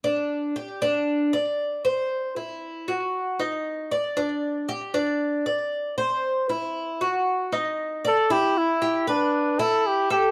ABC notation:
X:1
M:4/4
L:1/8
Q:1/4=116
K:Em
V:1 name="Trumpet"
z8 | z8 | z8 | z6 z A |
G E2 D2 A G G |]
V:2 name="Cuban tres"
D2 G D2 d2 c- | c E2 F2 ^D2 =d | D2 G D2 d2 c- | c E2 F2 ^D2 =d |
E2 G B2 E2 A |]